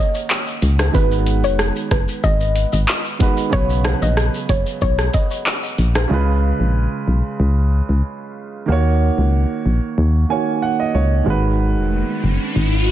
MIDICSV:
0, 0, Header, 1, 6, 480
1, 0, Start_track
1, 0, Tempo, 645161
1, 704, Time_signature, 4, 2, 24, 8
1, 9609, End_track
2, 0, Start_track
2, 0, Title_t, "Synth pluck"
2, 0, Program_c, 0, 84
2, 0, Note_on_c, 0, 75, 80
2, 91, Note_off_c, 0, 75, 0
2, 704, Note_on_c, 0, 71, 100
2, 906, Note_off_c, 0, 71, 0
2, 1072, Note_on_c, 0, 73, 85
2, 1167, Note_off_c, 0, 73, 0
2, 1424, Note_on_c, 0, 71, 76
2, 1531, Note_off_c, 0, 71, 0
2, 1664, Note_on_c, 0, 75, 107
2, 2009, Note_off_c, 0, 75, 0
2, 2625, Note_on_c, 0, 73, 108
2, 2732, Note_off_c, 0, 73, 0
2, 2993, Note_on_c, 0, 75, 77
2, 3087, Note_off_c, 0, 75, 0
2, 3345, Note_on_c, 0, 73, 84
2, 3452, Note_off_c, 0, 73, 0
2, 3585, Note_on_c, 0, 73, 99
2, 3692, Note_off_c, 0, 73, 0
2, 3824, Note_on_c, 0, 75, 81
2, 3931, Note_off_c, 0, 75, 0
2, 9609, End_track
3, 0, Start_track
3, 0, Title_t, "Grand piano"
3, 0, Program_c, 1, 0
3, 0, Control_c, 1, 64, 127
3, 0, Note_on_c, 1, 51, 69
3, 0, Note_on_c, 1, 58, 62
3, 0, Note_on_c, 1, 61, 64
3, 0, Note_on_c, 1, 66, 65
3, 0, Note_on_c, 1, 70, 76
3, 663, Note_off_c, 1, 51, 0
3, 669, Note_off_c, 1, 58, 0
3, 674, Note_off_c, 1, 61, 0
3, 680, Note_off_c, 1, 66, 0
3, 681, Note_on_c, 1, 51, 71
3, 686, Note_off_c, 1, 70, 0
3, 692, Note_on_c, 1, 56, 63
3, 704, Note_on_c, 1, 59, 64
3, 712, Control_c, 1, 64, 0
3, 715, Note_on_c, 1, 66, 60
3, 727, Note_on_c, 1, 71, 73
3, 857, Control_c, 1, 64, 127
3, 2343, Note_off_c, 1, 51, 0
3, 2348, Note_off_c, 1, 56, 0
3, 2354, Note_off_c, 1, 59, 0
3, 2360, Note_off_c, 1, 66, 0
3, 2366, Note_off_c, 1, 71, 0
3, 2372, Note_on_c, 1, 51, 65
3, 2378, Note_on_c, 1, 56, 60
3, 2384, Note_on_c, 1, 59, 60
3, 2389, Note_on_c, 1, 66, 59
3, 2395, Note_on_c, 1, 71, 71
3, 2601, Note_on_c, 1, 49, 66
3, 2613, Note_off_c, 1, 59, 0
3, 2613, Note_on_c, 1, 54, 61
3, 2618, Note_off_c, 1, 51, 0
3, 2621, Note_off_c, 1, 56, 0
3, 2624, Note_off_c, 1, 66, 0
3, 2624, Note_on_c, 1, 59, 61
3, 2630, Note_off_c, 1, 71, 0
3, 2633, Control_c, 1, 64, 0
3, 2635, Note_on_c, 1, 66, 60
3, 2647, Note_on_c, 1, 71, 78
3, 2745, Control_c, 1, 64, 127
3, 4503, Note_off_c, 1, 49, 0
3, 4509, Note_off_c, 1, 54, 0
3, 4514, Note_off_c, 1, 59, 0
3, 4520, Note_off_c, 1, 66, 0
3, 4521, Note_on_c, 1, 49, 75
3, 4526, Note_off_c, 1, 71, 0
3, 4536, Note_on_c, 1, 56, 67
3, 4552, Note_on_c, 1, 65, 68
3, 4556, Control_c, 1, 64, 0
3, 4567, Note_on_c, 1, 71, 81
3, 4678, Control_c, 1, 64, 127
3, 6423, Note_off_c, 1, 49, 0
3, 6430, Note_off_c, 1, 56, 0
3, 6438, Note_off_c, 1, 65, 0
3, 6442, Note_on_c, 1, 51, 74
3, 6446, Note_off_c, 1, 71, 0
3, 6457, Note_on_c, 1, 58, 68
3, 6472, Note_on_c, 1, 66, 70
3, 6475, Control_c, 1, 64, 0
3, 6488, Note_on_c, 1, 73, 82
3, 6588, Control_c, 1, 64, 127
3, 7629, Note_off_c, 1, 51, 0
3, 7636, Note_off_c, 1, 58, 0
3, 7644, Note_off_c, 1, 66, 0
3, 7652, Note_off_c, 1, 73, 0
3, 7653, Note_on_c, 1, 51, 58
3, 7661, Note_on_c, 1, 58, 53
3, 7665, Note_on_c, 1, 80, 69
3, 7668, Note_on_c, 1, 66, 55
3, 7676, Note_on_c, 1, 73, 65
3, 7888, Note_off_c, 1, 80, 0
3, 7904, Note_on_c, 1, 78, 71
3, 8022, Note_off_c, 1, 78, 0
3, 8032, Note_on_c, 1, 75, 68
3, 8133, Note_off_c, 1, 73, 0
3, 8137, Note_off_c, 1, 75, 0
3, 8144, Note_on_c, 1, 73, 73
3, 8350, Note_off_c, 1, 51, 0
3, 8361, Note_on_c, 1, 51, 74
3, 8367, Note_off_c, 1, 73, 0
3, 8377, Note_on_c, 1, 56, 69
3, 8381, Note_off_c, 1, 66, 0
3, 8382, Note_off_c, 1, 58, 0
3, 8392, Note_on_c, 1, 66, 67
3, 8395, Control_c, 1, 64, 0
3, 8408, Note_on_c, 1, 71, 84
3, 8533, Control_c, 1, 64, 127
3, 9609, Note_off_c, 1, 51, 0
3, 9609, Note_off_c, 1, 56, 0
3, 9609, Note_off_c, 1, 66, 0
3, 9609, Note_off_c, 1, 71, 0
3, 9609, End_track
4, 0, Start_track
4, 0, Title_t, "FM bass"
4, 0, Program_c, 2, 39
4, 464, Note_on_c, 2, 37, 97
4, 667, Note_off_c, 2, 37, 0
4, 704, Note_on_c, 2, 32, 113
4, 1072, Note_on_c, 2, 29, 92
4, 1083, Note_off_c, 2, 32, 0
4, 1275, Note_off_c, 2, 29, 0
4, 1423, Note_on_c, 2, 30, 90
4, 1531, Note_off_c, 2, 30, 0
4, 1665, Note_on_c, 2, 32, 111
4, 1976, Note_off_c, 2, 32, 0
4, 2032, Note_on_c, 2, 32, 96
4, 2127, Note_off_c, 2, 32, 0
4, 2624, Note_on_c, 2, 35, 114
4, 2935, Note_off_c, 2, 35, 0
4, 2991, Note_on_c, 2, 34, 97
4, 3194, Note_off_c, 2, 34, 0
4, 3343, Note_on_c, 2, 30, 92
4, 3451, Note_off_c, 2, 30, 0
4, 3585, Note_on_c, 2, 35, 115
4, 3788, Note_off_c, 2, 35, 0
4, 4304, Note_on_c, 2, 34, 93
4, 4507, Note_off_c, 2, 34, 0
4, 4544, Note_on_c, 2, 37, 104
4, 4855, Note_off_c, 2, 37, 0
4, 4911, Note_on_c, 2, 34, 89
4, 5114, Note_off_c, 2, 34, 0
4, 5264, Note_on_c, 2, 35, 90
4, 5372, Note_off_c, 2, 35, 0
4, 5504, Note_on_c, 2, 37, 109
4, 5815, Note_off_c, 2, 37, 0
4, 5872, Note_on_c, 2, 37, 88
4, 5967, Note_off_c, 2, 37, 0
4, 6464, Note_on_c, 2, 39, 104
4, 6775, Note_off_c, 2, 39, 0
4, 6831, Note_on_c, 2, 37, 91
4, 7035, Note_off_c, 2, 37, 0
4, 7184, Note_on_c, 2, 34, 85
4, 7292, Note_off_c, 2, 34, 0
4, 7424, Note_on_c, 2, 39, 106
4, 7628, Note_off_c, 2, 39, 0
4, 8145, Note_on_c, 2, 37, 86
4, 8348, Note_off_c, 2, 37, 0
4, 8384, Note_on_c, 2, 32, 108
4, 8751, Note_on_c, 2, 29, 88
4, 8763, Note_off_c, 2, 32, 0
4, 8955, Note_off_c, 2, 29, 0
4, 9104, Note_on_c, 2, 30, 85
4, 9212, Note_off_c, 2, 30, 0
4, 9344, Note_on_c, 2, 32, 106
4, 9609, Note_off_c, 2, 32, 0
4, 9609, End_track
5, 0, Start_track
5, 0, Title_t, "Riser"
5, 0, Program_c, 3, 103
5, 8384, Note_on_c, 3, 60, 84
5, 9609, Note_off_c, 3, 60, 0
5, 9609, End_track
6, 0, Start_track
6, 0, Title_t, "Drums"
6, 110, Note_on_c, 9, 82, 95
6, 114, Note_off_c, 9, 82, 0
6, 114, Note_on_c, 9, 82, 66
6, 188, Note_off_c, 9, 82, 0
6, 224, Note_on_c, 9, 39, 102
6, 224, Note_on_c, 9, 82, 72
6, 226, Note_off_c, 9, 82, 0
6, 226, Note_on_c, 9, 82, 82
6, 298, Note_off_c, 9, 39, 0
6, 300, Note_off_c, 9, 82, 0
6, 350, Note_on_c, 9, 82, 63
6, 352, Note_off_c, 9, 82, 0
6, 352, Note_on_c, 9, 82, 63
6, 426, Note_off_c, 9, 82, 0
6, 463, Note_on_c, 9, 42, 70
6, 463, Note_on_c, 9, 82, 52
6, 538, Note_off_c, 9, 42, 0
6, 538, Note_off_c, 9, 82, 0
6, 589, Note_on_c, 9, 65, 78
6, 589, Note_on_c, 9, 82, 81
6, 590, Note_off_c, 9, 82, 0
6, 590, Note_on_c, 9, 37, 99
6, 590, Note_on_c, 9, 82, 78
6, 663, Note_off_c, 9, 65, 0
6, 664, Note_off_c, 9, 82, 0
6, 665, Note_off_c, 9, 37, 0
6, 703, Note_on_c, 9, 82, 83
6, 704, Note_on_c, 9, 36, 118
6, 778, Note_off_c, 9, 36, 0
6, 778, Note_off_c, 9, 82, 0
6, 830, Note_on_c, 9, 82, 68
6, 834, Note_off_c, 9, 82, 0
6, 834, Note_on_c, 9, 82, 56
6, 908, Note_off_c, 9, 82, 0
6, 941, Note_on_c, 9, 42, 75
6, 941, Note_on_c, 9, 82, 55
6, 1016, Note_off_c, 9, 42, 0
6, 1016, Note_off_c, 9, 82, 0
6, 1071, Note_on_c, 9, 82, 80
6, 1072, Note_off_c, 9, 82, 0
6, 1072, Note_on_c, 9, 82, 77
6, 1147, Note_off_c, 9, 82, 0
6, 1183, Note_on_c, 9, 37, 103
6, 1184, Note_on_c, 9, 82, 83
6, 1185, Note_off_c, 9, 82, 0
6, 1185, Note_on_c, 9, 82, 81
6, 1258, Note_off_c, 9, 37, 0
6, 1260, Note_off_c, 9, 82, 0
6, 1310, Note_on_c, 9, 82, 60
6, 1385, Note_off_c, 9, 82, 0
6, 1422, Note_on_c, 9, 42, 79
6, 1422, Note_on_c, 9, 82, 58
6, 1423, Note_on_c, 9, 36, 101
6, 1423, Note_on_c, 9, 37, 90
6, 1424, Note_off_c, 9, 82, 0
6, 1424, Note_on_c, 9, 82, 61
6, 1497, Note_off_c, 9, 42, 0
6, 1498, Note_off_c, 9, 36, 0
6, 1498, Note_off_c, 9, 37, 0
6, 1499, Note_off_c, 9, 82, 0
6, 1549, Note_on_c, 9, 82, 79
6, 1551, Note_off_c, 9, 82, 0
6, 1551, Note_on_c, 9, 82, 73
6, 1626, Note_off_c, 9, 82, 0
6, 1663, Note_on_c, 9, 82, 69
6, 1665, Note_off_c, 9, 82, 0
6, 1665, Note_on_c, 9, 36, 102
6, 1665, Note_on_c, 9, 82, 81
6, 1739, Note_off_c, 9, 36, 0
6, 1739, Note_off_c, 9, 82, 0
6, 1791, Note_on_c, 9, 82, 60
6, 1866, Note_off_c, 9, 82, 0
6, 1902, Note_on_c, 9, 42, 95
6, 1902, Note_on_c, 9, 82, 68
6, 1903, Note_off_c, 9, 82, 0
6, 1903, Note_on_c, 9, 82, 59
6, 1976, Note_off_c, 9, 42, 0
6, 1978, Note_off_c, 9, 82, 0
6, 2029, Note_on_c, 9, 82, 92
6, 2034, Note_off_c, 9, 82, 0
6, 2034, Note_on_c, 9, 82, 66
6, 2108, Note_off_c, 9, 82, 0
6, 2144, Note_on_c, 9, 39, 102
6, 2144, Note_on_c, 9, 82, 73
6, 2146, Note_off_c, 9, 82, 0
6, 2146, Note_on_c, 9, 82, 85
6, 2218, Note_off_c, 9, 39, 0
6, 2220, Note_off_c, 9, 82, 0
6, 2270, Note_on_c, 9, 82, 63
6, 2271, Note_off_c, 9, 82, 0
6, 2271, Note_on_c, 9, 82, 61
6, 2346, Note_off_c, 9, 82, 0
6, 2383, Note_on_c, 9, 42, 73
6, 2383, Note_on_c, 9, 82, 51
6, 2384, Note_on_c, 9, 36, 100
6, 2457, Note_off_c, 9, 42, 0
6, 2457, Note_off_c, 9, 82, 0
6, 2459, Note_off_c, 9, 36, 0
6, 2509, Note_on_c, 9, 82, 77
6, 2510, Note_off_c, 9, 82, 0
6, 2510, Note_on_c, 9, 82, 80
6, 2584, Note_off_c, 9, 82, 0
6, 2623, Note_on_c, 9, 82, 63
6, 2624, Note_off_c, 9, 82, 0
6, 2624, Note_on_c, 9, 36, 112
6, 2624, Note_on_c, 9, 82, 79
6, 2698, Note_off_c, 9, 36, 0
6, 2698, Note_off_c, 9, 82, 0
6, 2750, Note_on_c, 9, 82, 65
6, 2753, Note_off_c, 9, 82, 0
6, 2753, Note_on_c, 9, 82, 54
6, 2827, Note_off_c, 9, 82, 0
6, 2860, Note_on_c, 9, 65, 77
6, 2860, Note_on_c, 9, 82, 55
6, 2861, Note_off_c, 9, 82, 0
6, 2861, Note_on_c, 9, 42, 75
6, 2861, Note_on_c, 9, 82, 52
6, 2863, Note_on_c, 9, 37, 108
6, 2935, Note_off_c, 9, 65, 0
6, 2936, Note_off_c, 9, 42, 0
6, 2936, Note_off_c, 9, 82, 0
6, 2938, Note_off_c, 9, 37, 0
6, 2991, Note_on_c, 9, 82, 75
6, 2993, Note_off_c, 9, 82, 0
6, 2993, Note_on_c, 9, 82, 77
6, 3067, Note_off_c, 9, 82, 0
6, 3103, Note_on_c, 9, 37, 97
6, 3104, Note_on_c, 9, 82, 80
6, 3105, Note_off_c, 9, 82, 0
6, 3105, Note_on_c, 9, 82, 81
6, 3178, Note_off_c, 9, 37, 0
6, 3179, Note_off_c, 9, 82, 0
6, 3230, Note_on_c, 9, 82, 59
6, 3304, Note_off_c, 9, 82, 0
6, 3342, Note_on_c, 9, 42, 81
6, 3342, Note_on_c, 9, 82, 56
6, 3343, Note_on_c, 9, 36, 97
6, 3344, Note_off_c, 9, 82, 0
6, 3344, Note_on_c, 9, 82, 62
6, 3416, Note_off_c, 9, 42, 0
6, 3418, Note_off_c, 9, 36, 0
6, 3418, Note_off_c, 9, 82, 0
6, 3469, Note_on_c, 9, 82, 75
6, 3471, Note_off_c, 9, 82, 0
6, 3471, Note_on_c, 9, 82, 72
6, 3545, Note_off_c, 9, 82, 0
6, 3583, Note_on_c, 9, 82, 72
6, 3584, Note_off_c, 9, 82, 0
6, 3584, Note_on_c, 9, 82, 78
6, 3585, Note_on_c, 9, 36, 101
6, 3658, Note_off_c, 9, 82, 0
6, 3659, Note_off_c, 9, 36, 0
6, 3710, Note_on_c, 9, 37, 94
6, 3710, Note_on_c, 9, 82, 55
6, 3711, Note_off_c, 9, 82, 0
6, 3711, Note_on_c, 9, 82, 60
6, 3784, Note_off_c, 9, 37, 0
6, 3786, Note_off_c, 9, 82, 0
6, 3821, Note_on_c, 9, 42, 92
6, 3821, Note_on_c, 9, 82, 69
6, 3823, Note_off_c, 9, 82, 0
6, 3823, Note_on_c, 9, 82, 61
6, 3825, Note_on_c, 9, 36, 95
6, 3895, Note_off_c, 9, 42, 0
6, 3898, Note_off_c, 9, 82, 0
6, 3900, Note_off_c, 9, 36, 0
6, 3949, Note_on_c, 9, 82, 93
6, 3954, Note_off_c, 9, 82, 0
6, 3954, Note_on_c, 9, 82, 67
6, 4029, Note_off_c, 9, 82, 0
6, 4064, Note_on_c, 9, 39, 105
6, 4065, Note_on_c, 9, 82, 80
6, 4138, Note_off_c, 9, 39, 0
6, 4140, Note_off_c, 9, 82, 0
6, 4190, Note_on_c, 9, 82, 66
6, 4192, Note_off_c, 9, 82, 0
6, 4192, Note_on_c, 9, 82, 62
6, 4266, Note_off_c, 9, 82, 0
6, 4303, Note_on_c, 9, 42, 70
6, 4303, Note_on_c, 9, 82, 51
6, 4377, Note_off_c, 9, 42, 0
6, 4377, Note_off_c, 9, 82, 0
6, 4429, Note_on_c, 9, 65, 75
6, 4429, Note_on_c, 9, 82, 73
6, 4430, Note_off_c, 9, 82, 0
6, 4430, Note_on_c, 9, 37, 98
6, 4430, Note_on_c, 9, 82, 76
6, 4504, Note_off_c, 9, 37, 0
6, 4504, Note_off_c, 9, 65, 0
6, 4504, Note_off_c, 9, 82, 0
6, 9609, End_track
0, 0, End_of_file